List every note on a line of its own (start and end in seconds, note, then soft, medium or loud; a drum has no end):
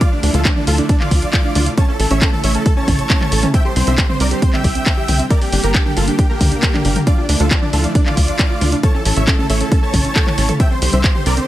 0.01 0.09 D3 medium
0.01 0.09 F3 medium
0.01 0.09 A3 loud
0.01 0.09 E4 medium
0.01 0.07 F4 medium
0.01 0.09 F4 medium
0.01 0.09 D5 loud
0.01 kick loud
0.01 closed hi-hat medium
0.12 0.20 D3 medium
0.12 0.20 F3 medium
0.12 0.20 A3 medium
0.12 0.18 D4 medium
0.12 0.20 D4 medium
0.12 0.20 E4 medium
0.23 0.30 D2 loud
0.23 0.38 D3 medium
0.23 0.38 F3 medium
0.23 0.38 A3 medium
0.23 0.29 D4 medium
0.23 0.31 D4 medium
0.23 0.38 E4 medium
0.23 open hi-hat loud
0.34 0.47 D2 loud
0.34 0.40 F4 medium
0.34 0.42 F4 medium
0.34 0.42 A4 loud
0.34 closed hi-hat medium
0.45 0.53 D3 medium
0.45 0.53 F3 medium
0.45 0.53 A3 medium
0.45 0.52 D4 medium
0.45 0.53 D4 medium
0.45 0.53 E4 medium
0.45 kick loud
0.45 clap loud
0.45 closed hi-hat medium
0.56 0.64 D3 medium
0.56 0.64 F3 medium
0.56 0.64 A3 medium
0.56 0.63 D4 medium
0.56 0.64 D4 medium
0.56 0.64 E4 medium
0.56 mid tom medium
0.67 0.81 D2 medium
0.67 0.83 D3 medium
0.67 0.83 F3 medium
0.67 0.83 A3 loud
0.67 0.83 E4 medium
0.67 0.74 F4 medium
0.67 0.75 F4 medium
0.67 0.75 A4 medium
0.67 open hi-hat loud
0.78 0.85 D4 medium
0.78 0.86 D4 medium
0.78 closed hi-hat medium
0.89 0.96 D4 medium
0.89 0.97 D4 medium
0.89 kick loud
0.89 closed hi-hat medium
1.00 1.16 D3 medium
1.00 1.16 F3 medium
1.00 1.16 A3 medium
1.00 1.16 E4 loud
1.00 1.07 F4 medium
1.00 1.69 F4 medium
1.00 1.69 D5 loud
1.00 clap soft
1.00 mid tom medium
1.11 1.25 D2 loud
1.11 1.18 D4 medium
1.11 kick medium
1.11 open hi-hat loud
1.22 1.30 D3 medium
1.22 1.30 F3 medium
1.22 1.30 A3 medium
1.22 1.29 D4 medium
1.22 1.30 E4 medium
1.22 closed hi-hat medium
1.33 1.49 D3 medium
1.33 1.49 F3 medium
1.33 1.49 A3 loud
1.33 1.49 E4 medium
1.33 1.40 F4 medium
1.33 kick loud
1.33 clap loud
1.33 closed hi-hat medium
1.44 1.51 D4 medium
1.55 1.69 D2 medium
1.55 1.62 D4 medium
1.55 open hi-hat loud
1.55 mid tom medium
1.66 1.73 F4 medium
1.66 closed hi-hat medium
1.77 1.85 C#3 medium
1.77 1.85 E3 medium
1.77 1.85 A3 medium
1.77 1.84 C#4 medium
1.77 1.85 E4 medium
1.77 1.86 C#5 medium
1.77 1.86 A5 loud
1.77 kick loud
1.77 closed hi-hat medium
1.88 1.96 C#3 medium
1.88 1.96 E3 medium
1.88 1.96 A3 medium
1.88 1.95 C#4 medium
1.88 1.96 E4 medium
1.88 1.97 A4 medium
2.00 2.06 A1 loud
2.00 2.15 C#3 loud
2.00 2.15 E3 medium
2.00 2.15 A3 loud
2.00 2.15 E4 medium
2.00 2.06 A4 medium
2.00 2.08 A4 medium
2.00 open hi-hat loud
2.11 2.24 A1 loud
2.11 2.17 C#4 medium
2.11 2.19 C#5 medium
2.11 2.19 E5 loud
2.11 closed hi-hat medium
2.22 2.29 C#3 loud
2.22 2.29 E3 medium
2.22 2.29 A3 medium
2.22 2.28 C#4 medium
2.22 2.29 E4 medium
2.22 2.30 A4 medium
2.22 kick loud
2.22 clap loud
2.22 closed hi-hat medium
2.33 2.40 C#3 medium
2.33 2.40 E3 medium
2.33 2.40 A3 medium
2.33 2.40 E4 medium
2.33 2.39 A4 medium
2.33 2.41 A4 medium
2.33 mid tom medium
2.44 2.57 A1 medium
2.44 2.59 C#3 loud
2.44 2.59 E3 loud
2.44 2.59 A3 medium
2.44 2.50 C#4 medium
2.44 2.59 E4 loud
2.44 2.52 C#5 medium
2.44 2.52 E5 loud
2.44 open hi-hat loud
2.55 2.61 C#4 medium
2.55 2.63 A4 medium
2.55 closed hi-hat medium
2.66 2.72 A4 medium
2.66 2.74 A4 medium
2.66 kick loud
2.66 closed hi-hat medium
2.77 2.92 C#3 medium
2.77 2.92 E3 medium
2.77 2.92 A3 loud
2.77 2.83 C#4 medium
2.77 2.92 E4 medium
2.77 3.45 C#5 medium
2.77 3.45 A5 loud
2.88 3.01 A1 loud
2.88 2.94 C#4 medium
2.88 kick medium
2.88 open hi-hat loud
2.88 mid tom medium
2.99 3.07 C#3 medium
2.99 3.07 E3 medium
2.99 3.07 A3 medium
2.99 3.07 E4 medium
2.99 3.05 A4 medium
2.99 closed hi-hat medium
3.10 3.25 C#3 medium
3.10 3.25 E3 loud
3.10 3.25 A3 medium
3.10 3.16 C#4 medium
3.10 3.25 E4 medium
3.10 kick loud
3.10 clap loud
3.10 closed hi-hat medium
3.21 3.27 C#4 medium
3.21 clap soft
3.21 mid tom medium
3.32 3.45 A1 medium
3.32 3.38 A4 medium
3.32 open hi-hat loud
3.43 3.49 C#4 medium
3.43 closed hi-hat medium
3.43 mid tom medium
3.54 3.62 D3 medium
3.54 3.62 G3 medium
3.54 3.60 C4 medium
3.54 3.62 C4 medium
3.54 3.62 G4 medium
3.54 3.62 E5 medium
3.54 3.62 G5 loud
3.54 kick loud
3.54 closed hi-hat medium
3.65 3.73 D3 medium
3.65 3.73 G3 medium
3.65 3.73 C4 medium
3.65 3.73 G4 medium
3.65 3.71 G4 medium
3.65 3.73 C5 medium
3.76 3.83 C2 loud
3.76 3.92 D3 medium
3.76 3.92 G3 medium
3.76 3.82 C4 medium
3.76 3.92 C4 medium
3.76 3.91 G4 medium
3.76 3.84 C5 medium
3.76 open hi-hat loud
3.87 4.00 C2 loud
3.87 3.93 C4 medium
3.87 3.95 C5 medium
3.87 3.95 E5 loud
3.87 closed hi-hat medium
3.98 4.06 D3 medium
3.98 4.06 G3 medium
3.98 4.06 C4 medium
3.98 4.04 G4 medium
3.98 4.06 G4 medium
3.98 4.06 C5 medium
3.98 kick loud
3.98 clap loud
3.98 closed hi-hat medium
4.09 4.17 D3 medium
4.09 4.17 G3 medium
4.09 4.15 C4 medium
4.09 4.17 C4 medium
4.09 4.17 G4 medium
4.09 4.17 C5 medium
4.09 mid tom medium
4.20 4.34 C2 medium
4.20 4.36 D3 medium
4.20 4.36 G3 medium
4.20 4.36 C4 medium
4.20 4.27 C4 medium
4.20 4.36 G4 medium
4.20 4.28 A#4 medium
4.20 4.28 D5 loud
4.20 open hi-hat loud
4.31 4.38 G4 medium
4.31 4.39 C5 medium
4.31 closed hi-hat medium
4.42 4.49 C4 medium
4.42 4.50 C5 medium
4.42 kick loud
4.42 closed hi-hat medium
4.53 4.69 D3 medium
4.53 4.69 G3 loud
4.53 4.69 C4 medium
4.53 4.60 C4 medium
4.53 4.69 G4 medium
4.53 5.22 E5 medium
4.53 5.22 G5 loud
4.53 clap soft
4.53 mid tom medium
4.64 4.78 C2 loud
4.64 4.71 G4 medium
4.64 kick medium
4.64 open hi-hat loud
4.75 4.83 D3 medium
4.75 4.83 G3 medium
4.75 4.83 C4 medium
4.75 4.82 C4 medium
4.75 4.83 G4 medium
4.75 closed hi-hat medium
4.86 5.02 D3 medium
4.86 5.02 G3 medium
4.86 4.93 C4 medium
4.86 5.02 C4 medium
4.86 5.02 G4 medium
4.86 kick loud
4.86 clap loud
4.86 closed hi-hat medium
4.97 5.04 G4 medium
5.08 5.22 C2 medium
5.08 5.15 C4 medium
5.08 open hi-hat loud
5.08 mid tom medium
5.19 5.26 C4 medium
5.19 closed hi-hat medium
5.30 5.38 D3 medium
5.30 5.38 G3 medium
5.30 5.38 A#3 medium
5.30 5.38 G4 medium
5.30 5.37 A#4 medium
5.30 5.39 A#4 medium
5.30 5.38 D5 loud
5.30 kick loud
5.30 closed hi-hat medium
5.41 5.49 D3 medium
5.41 5.49 G3 medium
5.41 5.49 A#3 medium
5.41 5.48 D4 medium
5.41 5.49 G4 medium
5.41 5.50 G4 medium
5.41 open hi-hat medium
5.52 5.59 G1 loud
5.52 5.68 D3 medium
5.52 5.68 G3 medium
5.52 5.68 A#3 medium
5.52 5.59 D4 medium
5.52 5.61 G4 medium
5.52 5.68 G4 medium
5.52 open hi-hat loud
5.63 5.77 G1 loud
5.63 5.72 G4 medium
5.63 5.72 A#4 loud
5.63 5.70 A#4 medium
5.63 closed hi-hat medium
5.74 5.82 D3 medium
5.74 5.82 G3 medium
5.74 5.82 A#3 medium
5.74 5.81 D4 medium
5.74 5.82 G4 medium
5.74 5.83 G4 medium
5.74 kick loud
5.74 clap loud
5.74 closed hi-hat medium
5.86 5.93 D3 medium
5.86 5.93 G3 medium
5.86 5.93 A#3 medium
5.86 5.92 D4 medium
5.86 5.93 G4 medium
5.86 5.94 G4 medium
5.86 mid tom medium
5.96 6.10 G1 medium
5.96 6.12 D3 medium
5.96 6.12 G3 medium
5.96 6.12 A#3 medium
5.96 6.05 F4 medium
5.96 6.12 G4 medium
5.96 6.05 A4 medium
5.96 6.03 A#4 medium
5.96 open hi-hat loud
6.08 6.14 D4 medium
6.08 6.16 G4 medium
6.08 closed hi-hat medium
6.19 6.25 D4 medium
6.19 6.27 G4 medium
6.19 kick loud
6.19 closed hi-hat medium
6.30 6.45 D3 medium
6.30 6.45 G3 loud
6.30 6.98 A#3 medium
6.30 6.45 A#3 medium
6.30 6.98 G4 loud
6.30 6.45 G4 loud
6.30 6.36 A#4 medium
6.41 6.54 D2 medium
6.41 6.47 D4 medium
6.41 kick medium
6.41 open hi-hat loud
6.41 mid tom medium
6.52 6.60 D3 medium
6.52 6.60 G3 medium
6.52 6.59 A#3 medium
6.52 6.58 D4 medium
6.52 6.60 G4 medium
6.52 closed hi-hat medium
6.63 6.78 D3 medium
6.63 6.78 G3 medium
6.63 6.78 A#3 medium
6.63 6.78 G4 medium
6.63 6.69 A#4 medium
6.63 kick loud
6.63 clap loud
6.63 closed hi-hat medium
6.74 6.80 D4 medium
6.74 clap soft
6.74 mid tom medium
6.85 6.98 G1 loud
6.85 6.91 D4 medium
6.85 open hi-hat loud
6.96 7.02 A#4 medium
6.96 closed hi-hat medium
6.96 mid tom medium
7.07 7.15 D3 medium
7.07 7.15 F3 medium
7.07 7.15 A3 medium
7.07 7.13 D4 medium
7.07 7.15 E4 medium
7.07 7.15 F4 medium
7.07 7.15 D5 loud
7.07 kick loud
7.07 closed hi-hat medium
7.18 7.26 D3 medium
7.18 7.26 F3 medium
7.18 7.26 A3 medium
7.18 7.26 D4 medium
7.18 7.26 E4 medium
7.18 7.24 F4 medium
7.29 7.36 D2 loud
7.29 7.44 D3 medium
7.29 7.44 F3 medium
7.29 7.44 A3 medium
7.29 7.37 D4 medium
7.29 7.35 D4 medium
7.29 7.44 E4 medium
7.29 open hi-hat loud
7.40 7.53 D2 loud
7.40 7.46 D4 medium
7.40 7.48 F4 medium
7.40 7.48 A4 loud
7.40 closed hi-hat medium
7.51 7.59 D3 medium
7.51 7.59 F3 medium
7.51 7.59 A3 medium
7.51 7.59 D4 medium
7.51 7.59 E4 medium
7.51 7.57 F4 medium
7.51 kick loud
7.51 clap loud
7.51 closed hi-hat medium
7.62 7.70 D3 medium
7.62 7.70 F3 medium
7.62 7.70 A3 medium
7.62 7.70 D4 medium
7.62 7.68 D4 medium
7.62 7.70 E4 medium
7.62 mid tom medium
7.73 7.86 D2 medium
7.73 7.89 D3 medium
7.73 7.88 F3 medium
7.73 7.89 A3 loud
7.73 7.79 D4 medium
7.73 7.89 E4 medium
7.73 7.81 F4 medium
7.73 7.81 A4 loud
7.73 open hi-hat loud
7.84 7.92 D4 medium
7.84 7.90 F4 medium
7.84 closed hi-hat medium
7.95 8.03 D4 medium
7.95 8.02 D4 medium
7.95 kick loud
7.95 closed hi-hat medium
8.06 8.22 D3 medium
8.06 8.22 F3 medium
8.06 8.22 A3 medium
8.06 8.13 D4 medium
8.06 8.22 E4 medium
8.06 8.75 F4 medium
8.06 8.75 D5 loud
8.06 clap soft
8.06 mid tom medium
8.17 8.31 D2 loud
8.17 8.24 F4 medium
8.17 kick medium
8.17 open hi-hat loud
8.28 8.36 D3 medium
8.28 8.36 F3 medium
8.28 8.36 A3 medium
8.28 8.35 D4 medium
8.28 8.36 E4 medium
8.28 closed hi-hat medium
8.39 8.55 D3 medium
8.39 8.55 F3 medium
8.39 8.55 A3 loud
8.39 8.46 D4 medium
8.39 8.55 E4 medium
8.39 kick loud
8.39 clap loud
8.39 closed hi-hat medium
8.50 8.57 F4 medium
8.61 8.75 D2 medium
8.61 8.68 D4 medium
8.61 open hi-hat loud
8.61 mid tom medium
8.72 8.79 D4 medium
8.72 closed hi-hat medium
8.83 8.91 C#3 medium
8.83 8.91 E3 medium
8.83 8.91 A3 medium
8.83 8.91 E4 medium
8.83 8.90 A4 medium
8.83 8.91 C#5 medium
8.83 8.91 A5 loud
8.83 kick loud
8.83 closed hi-hat medium
8.94 9.02 C#3 medium
8.94 9.02 E3 medium
8.94 9.02 A3 medium
8.94 9.01 C#4 medium
8.94 9.02 E4 medium
8.94 9.02 A4 medium
9.05 9.12 A1 loud
9.05 9.21 C#3 medium
9.05 9.21 E3 medium
9.05 9.21 A3 loud
9.05 9.12 C#4 medium
9.05 9.21 E4 medium
9.05 9.13 A4 medium
9.05 open hi-hat loud
9.16 9.30 A1 loud
9.16 9.23 A4 medium
9.16 9.25 C#5 medium
9.16 9.25 E5 loud
9.16 closed hi-hat medium
9.27 9.35 C#3 medium
9.27 9.35 E3 medium
9.27 9.35 A3 medium
9.27 9.34 C#4 medium
9.27 9.35 E4 medium
9.27 9.36 A4 medium
9.27 kick loud
9.27 clap loud
9.27 closed hi-hat medium
9.39 9.46 C#3 medium
9.39 9.46 E3 medium
9.39 9.46 A3 medium
9.39 9.45 C#4 medium
9.39 9.46 E4 medium
9.39 9.47 A4 medium
9.39 mid tom medium
9.50 9.63 A1 medium
9.50 9.65 C#3 medium
9.50 9.65 E3 loud
9.50 9.65 A3 loud
9.50 9.65 E4 medium
9.50 9.56 A4 medium
9.50 9.58 C#5 medium
9.50 9.58 E5 medium
9.50 open hi-hat loud
9.61 9.67 C#4 medium
9.61 9.69 A4 medium
9.61 closed hi-hat medium
9.72 9.78 C#4 medium
9.72 9.80 A4 medium
9.72 kick loud
9.72 closed hi-hat medium
9.83 9.98 C#3 medium
9.83 9.98 E3 loud
9.83 9.98 A3 loud
9.83 9.98 E4 medium
9.83 9.89 A4 medium
9.83 10.51 C#5 medium
9.83 10.51 A5 loud
9.94 10.07 A1 loud
9.94 10.00 C#4 medium
9.94 kick medium
9.94 open hi-hat loud
9.94 mid tom medium
10.05 10.12 C#3 medium
10.05 10.12 E3 medium
10.05 10.12 A3 medium
10.05 10.11 C#4 medium
10.05 10.12 E4 medium
10.05 closed hi-hat medium
10.16 10.31 C#3 medium
10.16 10.31 E3 medium
10.16 10.31 A3 medium
10.16 10.31 E4 medium
10.16 10.22 A4 medium
10.16 kick loud
10.16 clap loud
10.16 closed hi-hat medium
10.27 10.33 C#4 medium
10.27 clap soft
10.27 mid tom medium
10.38 10.51 A1 medium
10.38 10.44 C#4 medium
10.38 open hi-hat loud
10.49 10.55 A4 medium
10.49 closed hi-hat medium
10.49 mid tom medium
10.60 10.68 D3 medium
10.60 10.68 G3 medium
10.60 10.68 C4 medium
10.60 10.66 C4 medium
10.60 10.68 G4 medium
10.60 10.68 E5 medium
10.60 10.68 G5 loud
10.60 kick loud
10.60 closed hi-hat medium
10.71 10.79 D3 medium
10.71 10.79 G3 medium
10.71 10.79 C4 medium
10.71 10.77 C4 medium
10.71 10.79 G4 medium
10.71 10.79 C5 medium
10.82 10.89 C2 loud
10.82 10.97 D3 loud
10.82 10.97 G3 medium
10.82 10.97 C4 loud
10.82 10.88 G4 medium
10.82 10.97 G4 medium
10.82 10.90 C5 medium
10.82 open hi-hat loud
10.93 11.06 C2 loud
10.93 10.99 C4 medium
10.93 11.01 C5 medium
10.93 11.01 E5 medium
10.93 closed hi-hat medium
11.04 11.12 D3 medium
11.04 11.12 G3 medium
11.04 11.10 C4 medium
11.04 11.12 C4 medium
11.04 11.12 G4 medium
11.04 11.12 C5 medium
11.04 kick loud
11.04 clap loud
11.04 closed hi-hat medium
11.15 11.23 D3 medium
11.15 11.23 G3 medium
11.15 11.23 C4 medium
11.15 11.21 G4 medium
11.15 11.23 G4 medium
11.15 11.23 C5 medium
11.15 mid tom medium
11.26 11.39 C2 medium
11.26 11.42 D3 loud
11.26 11.42 G3 medium
11.26 11.32 C4 medium
11.26 11.42 C4 medium
11.26 11.42 G4 medium
11.26 11.34 A#4 medium
11.26 11.34 D5 medium
11.26 open hi-hat loud
11.37 11.43 C4 medium
11.37 11.45 C5 medium
11.37 closed hi-hat medium